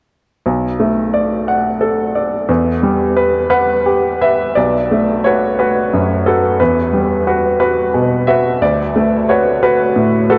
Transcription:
grand piano
0.46 B1
0.80 A3
1.14 D5
1.48 F#5
1.81 A4
2.15 D5
2.49 E2
2.83 G3
3.17 B4
3.50 B4 F#5
3.86 G4
4.21 B4 E5
4.55 B1 D5
4.91 A3
5.24 F#4 B4 C#5
5.59 F#4 B4
5.93 F#2
6.26 F#4 A4 B4
6.60 E2 B4
6.93 G3
7.27 F#4 B4
7.60 F#4 B4
7.94 B2
8.27 F#4 B4 E5
8.62 D2 D5
8.96 A3
9.29 F#4 B4 C#5
9.63 F#4 B4
9.96 A2
10.30 F#4 A4 B4

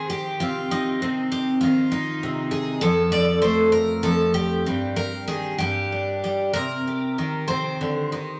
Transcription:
twelve-string acoustic guitar
Already playing: D#3 C5
0.10 G4
0.40 C3 F4
0.71 D#4
1.02 C3 C4
1.32 G4
1.61 D#3 F4
1.92 D#4
2.23 C3
2.51 G#4
2.81 F2 A4
3.12 D5
3.42 A3 C5
3.72 A#4
4.03 F2 A4
4.34 G4
4.66 G2 C4
4.96 A#4
5.28 D#3 G#4
5.58 G2 G4
5.92 D4
6.24 G3
6.53 C3 A#4
6.87 G4
7.18 D#3
7.48 C3 C5
7.81 D3
8.12 D#3

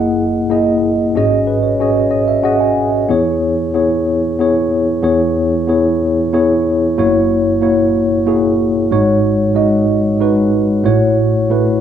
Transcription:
tine electric piano
Already playing: F#1 F#2 A#3 E4 G#4 D#5 F#5
0.49 A#3 E4 G#4 D#5
1.15 G#1 G#2 C#4 F#4 G#4 D#5
1.47 B4
1.63 C#5
1.80 C#4 F#4 G#4 C#5 D#5
2.11 D#5
2.28 E5
2.43 C#4 F#4 G#4 D#5 F#5
2.60 G#5
3.09 E2 E3 B3 E4 G#4 C#5
3.74 B3 E4 G#4 C#5
4.39 B3 E4 G#4 C#5
5.02 E2 E3 B3 E4 G#4 C#5
5.67 B3 E4 G#4 C#5
6.33 B3 E4 G#4 C#5
6.98 F#1 F#2 A#3 E4 F#4 C#5
7.61 A#3 E4 F#4 C#5
8.26 A#3 E4 F#4 G#4
8.91 G#1 G#2 G#3 D#4 F#4 C#5
9.54 G#3 D#4 F#4 D#5
10.20 G#3 D#4 F#4 B4
10.84 A1 A2 A3 E4 F#4 C#5
11.50 A3 E4 F#4 B4

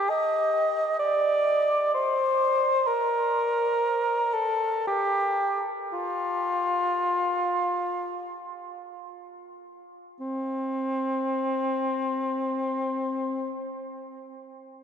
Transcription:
cor anglais
Already playing: G4
0.09 D#5
0.99 D5
1.94 C5
2.87 A#4
4.34 A4
4.87 G4
5.93 F4
10.20 C4

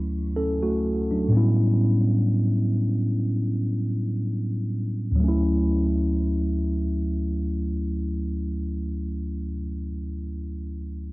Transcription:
tine electric piano
Already playing: D2 F#3 A3 C#4 E4
0.36 C#4 A4
0.63 A3 F#4
1.11 F#3 D4
1.28 A2 G3
1.33 B3 C#4
1.37 E4
5.12 D2
5.16 F#3
5.20 A3
5.24 C#4
5.29 E4

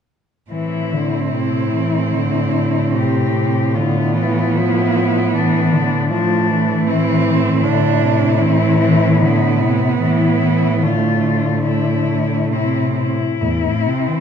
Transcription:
cello
0.51 A2 E3 C4 E4
0.93 D3
1.34 C3 E4
1.75 E3
2.16 D3
2.95 C3 G4
3.35 C3
3.75 D3 B3 F4
4.15 E3
4.55 F3 E4
5.34 E3 D4
5.72 D3
6.10 F3 A3 D4
6.48 E3
6.87 A2 C4 E4
7.26 E4
7.64 D3 D4
8.03 C3
8.42 E3 C4
8.81 C4
9.21 D3 B3
9.62 C3
10.01 A2 E3 E4
10.43 E3
10.83 D3 A3 F4
11.66 A3 E4
12.52 C3 C4 E4
12.97 E4
13.42 E2 A2 C4
13.64 A2
13.86 C3
14.09 E3

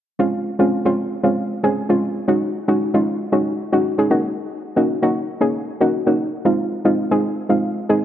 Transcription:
synth pluck
0.19 G#3 C4 C#4 F4
0.59 G#3 C4 C#4 F4
0.85 G#3 C4 C#4 F4
1.24 G#3 C4 C#4 F4
1.64 G#3 C4 C#4 G#4
1.89 G#3 C4 C#4 F4
2.28 G#3 C#4 D#4 F#4
2.68 G#3 C#4 D#4 F#4
2.94 G#3 C#4 D#4 F4
3.32 G#3 C#4 D#4 F#4
3.72 G#3 C#4 D#4 F#4
3.98 G#3 C#4 D#4 G#4
4.10 A#3 C#4 D#4 F#4
4.76 A#3 C#4 D#4 F#4
5.02 A#3 C#4 D#4 F#4
5.41 A#3 C#4 D#4 G#4
5.81 A#3 C#4 D#4 F#4
6.07 A#3 C#4 D#4 F#4
6.45 G#3 C4 D#4 F4
6.85 G#3 C4 D#4 F4
7.11 G#3 C4 D#4 G#4
7.49 G#3 C4 D#4 F4
7.89 G#3 C4 D#4 G#4

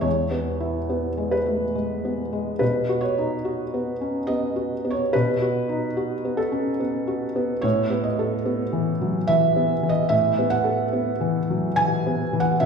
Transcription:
felt piano
Already playing: G#3
0.01 E2 C#5
0.31 B3
0.60 E4
0.90 B3
1.18 G#3
1.31 B4
1.46 A3
1.75 G#3
2.05 B3
2.33 G#3
2.59 B2 B4
2.89 F#4
3.01 C#5
3.18 D#4
3.45 F#4
3.74 B3
4.01 C#4
4.27 B3 D#5
4.56 F#4
4.85 B3
4.91 C#5
5.13 B2 B4
5.42 F#4
5.69 D#4
5.97 F#4
6.25 B3
6.37 A4
6.52 C#4
6.80 B3
7.07 F#4
7.36 B3
7.62 A2 C#5
7.90 B3
8.04 D#5
8.19 A4
8.46 B3
8.73 E3
9.01 F#3
9.27 E3 E5
9.56 B3
9.83 E3
9.89 D#5
10.09 A2 E5
10.39 B3
10.50 F#5
10.64 A4
10.93 B3
11.21 E3
11.50 F#3
11.76 E3 G#5
12.07 B3
12.33 E3
12.40 F#5
12.60 B2 E5

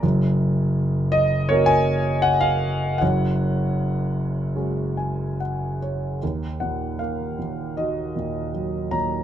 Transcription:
grand piano
0.03 F#1 F#2
1.12 D#5
1.49 A#3 C#4 F#4 A#4 C#5
1.66 G#5
2.22 F#5
2.41 F5
2.98 F#1 F#2 C#5 F#5
4.56 G#3 C#4 F#4
4.97 G#5
5.40 F#5
5.82 C#5
6.23 D#2
6.60 A#2 F#5
6.99 A#3 F5
7.39 A#2
7.77 D#3 F#4 D#5
8.16 A#2
8.54 F#3
8.91 A#2 C#5 A#5

